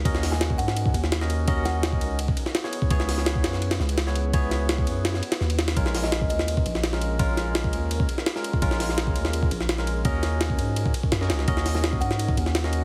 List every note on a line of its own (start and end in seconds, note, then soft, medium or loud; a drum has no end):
0.00 5.73 C#4 medium
0.00 2.16 D#4 medium
0.00 2.16 F#4 medium
0.00 2.16 A#4 medium
0.05 0.60 D#2 loud
0.05 0.92 C#4 loud
0.05 0.92 F#4 medium
0.05 0.92 A#4 medium
0.05 0.92 D#5 loud
0.05 kick loud
0.05 ride medium
0.15 snare medium
0.23 snare soft
0.23 open hi-hat medium
0.32 0.53 G#5 medium
0.32 snare soft
0.41 snare loud
0.41 ride medium
0.50 kick loud
0.58 0.93 G#2 medium
0.58 0.80 F#5 medium
0.58 ride medium
0.68 snare medium
0.77 ride medium
0.86 kick loud
0.94 1.46 D#2 loud
0.94 ride medium
1.04 snare soft
1.12 snare loud
1.12 ride medium
1.21 1.46 C#4 medium
1.21 1.46 F#4 medium
1.21 1.46 A#4 medium
1.21 1.46 D#5 loud
1.21 snare medium
1.30 ride medium
1.48 2.03 D#2 loud
1.48 2.18 C#4 loud
1.48 2.18 F#4 medium
1.48 2.18 A#4 medium
1.48 2.18 D#5 loud
1.48 kick loud
1.48 ride medium
1.65 2.01 F#5 medium
1.65 snare medium
1.65 ride medium
1.83 snare loud
1.83 ride medium
1.93 kick loud
2.01 2.36 C#2 medium
2.01 ride medium
2.19 5.73 E4 medium
2.19 3.60 G#4 medium
2.19 5.73 B4 medium
2.19 ride medium
2.28 kick loud
2.37 ride medium
2.46 snare soft
2.55 snare loud
2.55 ride medium
2.64 2.89 B3 medium
2.64 2.89 E4 medium
2.64 2.89 G#4 medium
2.64 2.89 C#5 loud
2.64 snare soft
2.73 ride medium
2.82 kick medium
2.90 3.46 C#2 loud
2.90 3.78 B3 loud
2.90 3.78 E4 medium
2.90 3.78 G#4 medium
2.90 3.78 C#5 loud
2.90 kick loud
2.90 ride medium
3.00 snare medium
3.09 snare soft
3.09 open hi-hat medium
3.18 snare soft
3.26 snare loud
3.26 ride medium
3.35 kick loud
3.44 3.79 F#2 medium
3.44 snare loud
3.44 ride medium
3.53 snare soft
3.62 5.74 F#4 medium
3.62 ride medium
3.71 snare loud
3.71 ride medium
3.80 4.32 C#2 loud
3.80 snare soft
3.89 ride medium
3.98 snare loud
3.98 ride medium
4.07 4.32 B3 medium
4.07 4.32 E4 medium
4.07 4.32 G#4 medium
4.07 4.32 C#5 medium
4.07 snare soft
4.15 ride medium
4.33 4.89 C#2 loud
4.33 5.21 B3 loud
4.33 5.21 E4 medium
4.33 5.21 G#4 medium
4.33 5.21 C#5 loud
4.33 kick loud
4.33 ride medium
4.51 snare medium
4.51 ride medium
4.69 snare loud
4.69 ride medium
4.78 kick loud
4.87 5.22 F#2 medium
4.87 ride medium
5.05 snare loud
5.05 ride medium
5.14 snare soft
5.23 ride medium
5.32 snare loud
5.32 ride medium
5.41 5.75 D#2 medium
5.41 snare soft
5.50 ride medium
5.59 snare loud
5.59 ride medium
5.68 snare loud
5.68 ride medium
5.76 6.32 A#1 loud
5.76 6.64 G#3 loud
5.76 6.64 C#4 medium
5.76 12.84 C#4 medium
5.76 6.64 F4 medium
5.76 10.01 F4 medium
5.76 10.01 G#4 medium
5.76 6.64 A#4 loud
5.76 12.84 A#4 medium
5.76 kick loud
5.76 ride medium
5.86 snare medium
5.95 snare soft
5.95 open hi-hat medium
6.03 6.25 D#5 medium
6.03 snare soft
6.12 snare loud
6.12 ride medium
6.21 kick loud
6.30 6.64 D#2 medium
6.30 6.80 D#5 medium
6.30 ride medium
6.39 snare medium
6.48 ride medium
6.57 kick loud
6.66 7.18 A#1 loud
6.66 ride medium
6.75 snare soft
6.84 snare loud
6.84 ride medium
6.93 7.17 G#3 medium
6.93 7.17 C#4 medium
6.93 7.17 F4 medium
6.93 7.17 A#4 loud
6.93 snare medium
7.01 ride medium
7.19 7.75 A#1 loud
7.19 8.07 G#3 loud
7.19 8.07 C#4 medium
7.19 8.07 F4 medium
7.19 8.07 A#4 loud
7.19 kick loud
7.19 ride medium
7.37 snare soft
7.37 ride medium
7.55 snare loud
7.55 ride medium
7.64 kick loud
7.73 8.07 D#2 medium
7.73 ride medium
7.91 ride medium
8.00 kick loud
8.09 ride medium
8.18 snare soft
8.26 snare loud
8.26 ride medium
8.36 8.60 G#3 medium
8.36 8.60 C#4 medium
8.36 8.60 F4 medium
8.36 8.60 A#4 loud
8.36 snare soft
8.44 ride medium
8.53 kick medium
8.62 9.17 A#1 loud
8.62 9.49 G#3 loud
8.62 9.49 C#4 medium
8.62 9.49 F4 loud
8.62 9.49 A#4 loud
8.62 kick loud
8.62 ride medium
8.71 snare medium
8.80 snare soft
8.80 open hi-hat medium
8.89 snare soft
8.98 snare loud
8.98 ride medium
9.07 kick loud
9.16 9.50 D#2 medium
9.16 ride medium
9.25 snare medium
9.33 ride medium
9.43 kick medium
9.51 10.04 A#1 loud
9.51 ride medium
9.61 snare soft
9.69 snare loud
9.69 ride medium
9.78 10.03 G#3 medium
9.78 10.03 C#4 medium
9.78 10.03 F4 medium
9.78 10.03 A#4 medium
9.78 snare medium
9.87 ride medium
10.05 10.60 D#2 loud
10.05 10.92 C#4 loud
10.05 12.84 D#4 medium
10.05 12.84 F#4 medium
10.05 10.92 F#4 medium
10.05 10.92 A#4 medium
10.05 10.92 D#5 loud
10.05 kick loud
10.05 ride medium
10.23 snare medium
10.23 ride medium
10.41 snare loud
10.41 ride medium
10.50 kick loud
10.59 10.93 G#2 medium
10.59 ride medium
10.76 ride medium
10.86 kick loud
10.94 ride medium
11.03 kick medium
11.12 11.32 F#2 loud
11.12 snare loud
11.12 ride medium
11.21 11.46 C#4 medium
11.21 11.46 F#4 medium
11.21 11.46 A#4 medium
11.21 11.46 D#5 medium
11.21 snare soft
11.30 11.46 C#2 medium
11.30 snare loud
11.30 ride medium
11.39 snare soft
11.48 12.03 D#2 loud
11.48 12.35 C#4 loud
11.48 12.35 F#4 medium
11.48 12.35 A#4 medium
11.48 12.35 D#5 loud
11.48 kick loud
11.48 ride medium
11.57 snare medium
11.66 snare soft
11.66 open hi-hat medium
11.75 11.96 G#5 medium
11.75 snare soft
11.84 snare loud
11.84 ride medium
11.93 kick loud
12.01 12.36 G#2 medium
12.01 12.23 F#5 medium
12.01 ride medium
12.11 snare medium
12.19 ride medium
12.29 kick loud
12.37 12.84 D#2 loud
12.37 ride medium
12.46 snare soft
12.55 snare loud
12.55 ride medium
12.64 12.84 C#4 medium
12.64 12.84 F#4 medium
12.64 12.84 A#4 medium
12.64 12.84 D#5 loud
12.64 snare medium
12.73 ride medium